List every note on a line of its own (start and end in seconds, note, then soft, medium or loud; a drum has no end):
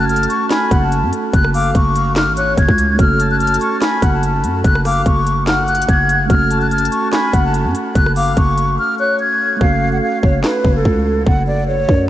0.00 0.27 F#1 loud
0.00 2.93 A3 medium
0.00 2.94 C#4 medium
0.00 2.95 F#4 medium
0.00 2.97 A4 medium
0.00 0.47 A5 medium
0.09 0.26 F6 medium
0.09 closed hi-hat medium
0.16 closed hi-hat medium
0.23 closed hi-hat medium
0.29 0.46 C#6 medium
0.29 closed hi-hat medium
0.51 0.70 G#5 medium
0.51 0.80 B5 medium
0.51 snare loud
0.51 clap medium
0.51 closed hi-hat medium
0.71 1.04 F#1 loud
0.71 0.91 F#5 medium
0.71 kick loud
0.71 closed hi-hat medium
0.82 1.11 A5 medium
0.92 closed hi-hat medium
1.03 1.12 F#2 loud
1.13 closed hi-hat medium
1.33 1.73 F#1 loud
1.33 1.50 F#6 medium
1.33 kick loud
1.33 closed hi-hat medium
1.44 cross-stick loud
1.54 1.74 F5 medium
1.54 1.71 D6 medium
1.54 open hi-hat medium
1.75 2.29 F#1 loud
1.75 2.14 C#6 medium
1.75 kick loud
1.75 closed hi-hat medium
1.96 closed hi-hat medium
2.16 2.33 F6 medium
2.16 snare loud
2.16 clap loud
2.16 closed hi-hat medium
2.27 2.56 G#1 loud
2.37 2.57 C#5 medium
2.37 2.54 F#6 medium
2.37 closed hi-hat medium
2.58 2.68 F#1 loud
2.58 2.97 G#6 medium
2.58 kick loud
2.58 closed hi-hat medium
2.69 2.98 C#2 loud
2.69 kick loud
2.78 closed hi-hat medium
2.94 6.24 A3 medium
2.94 6.25 C#4 medium
2.99 3.59 F#1 loud
2.99 6.26 F#4 medium
2.99 3.29 F6 medium
2.99 kick loud
2.99 closed hi-hat medium
3.03 6.28 A4 medium
3.20 3.78 A5 medium
3.20 closed hi-hat loud
3.31 3.38 F#6 medium
3.40 3.57 F6 medium
3.40 closed hi-hat medium
3.47 closed hi-hat medium
3.54 closed hi-hat medium
3.61 3.77 C#6 medium
3.61 closed hi-hat medium
3.81 4.01 G#5 medium
3.81 4.11 B5 medium
3.81 snare loud
3.81 clap medium
3.81 closed hi-hat medium
4.02 4.45 F#1 loud
4.02 4.22 F#5 medium
4.02 kick loud
4.02 closed hi-hat medium
4.13 4.61 A5 medium
4.23 closed hi-hat medium
4.44 4.63 F#2 loud
4.44 closed hi-hat medium
4.64 5.04 F#1 loud
4.64 4.81 F#6 medium
4.64 kick loud
4.64 closed hi-hat medium
4.75 cross-stick loud
4.85 5.05 F5 medium
4.85 5.02 D6 medium
4.85 cross-stick medium
4.85 open hi-hat loud
5.06 5.85 F#1 loud
5.06 5.45 C#6 medium
5.06 kick loud
5.06 closed hi-hat medium
5.27 closed hi-hat medium
5.47 6.26 F#5 medium
5.47 5.64 F6 medium
5.47 snare loud
5.47 clap medium
5.47 closed hi-hat medium
5.68 5.84 F#6 medium
5.68 closed hi-hat soft
5.75 closed hi-hat medium
5.82 closed hi-hat medium
5.89 6.28 F#1 loud
5.89 6.28 G#6 medium
5.89 kick loud
5.89 closed hi-hat medium
6.09 closed hi-hat medium
6.26 9.55 A3 medium
6.26 9.56 C#4 medium
6.26 6.59 F6 loud
6.30 6.90 F#1 loud
6.30 9.57 F#4 medium
6.30 kick loud
6.30 closed hi-hat medium
6.34 9.59 A4 medium
6.50 7.09 A5 medium
6.50 closed hi-hat medium
6.61 6.69 F#6 medium
6.71 6.88 F6 medium
6.71 closed hi-hat medium
6.78 closed hi-hat medium
6.85 closed hi-hat medium
6.91 7.08 C#6 medium
6.91 closed hi-hat medium
7.13 7.32 G#5 medium
7.13 7.42 B5 medium
7.13 snare loud
7.13 clap medium
7.13 closed hi-hat medium
7.33 7.67 F#1 loud
7.33 7.53 F#5 medium
7.33 kick loud
7.33 closed hi-hat medium
7.44 7.73 A5 medium
7.54 closed hi-hat medium
7.65 7.74 F#2 loud
7.75 closed hi-hat medium
7.95 8.35 F#1 loud
7.95 8.12 F#6 medium
7.95 kick loud
7.95 closed hi-hat medium
8.06 cross-stick medium
8.16 8.36 F5 medium
8.16 8.33 D6 medium
8.16 open hi-hat medium
8.37 8.78 F#1 loud
8.37 8.76 C#6 medium
8.37 kick loud
8.37 closed hi-hat medium
8.58 closed hi-hat medium
8.79 8.95 F6 medium
8.99 9.19 C#5 medium
8.99 9.16 F#6 medium
9.20 9.59 G#6 medium
9.57 12.10 A3 medium
9.57 12.10 C#4 medium
9.61 10.01 F#1 loud
9.61 12.10 F#4 medium
9.61 9.91 F5 medium
9.61 kick loud
9.65 12.10 A4 medium
9.93 10.01 F#5 medium
10.02 10.19 F5 medium
10.23 10.43 F#1 loud
10.23 10.40 C#5 medium
10.23 kick medium
10.43 10.73 B4 medium
10.43 snare loud
10.43 clap medium
10.64 10.84 F#1 loud
10.64 kick loud
10.75 11.23 A4 medium
10.85 11.25 C#2 loud
10.85 kick medium
11.26 11.86 F#1 loud
11.26 11.43 F#5 medium
11.26 kick loud
11.48 11.64 D5 medium
11.68 12.07 C#5 medium
11.89 12.10 F#2 loud
11.89 kick loud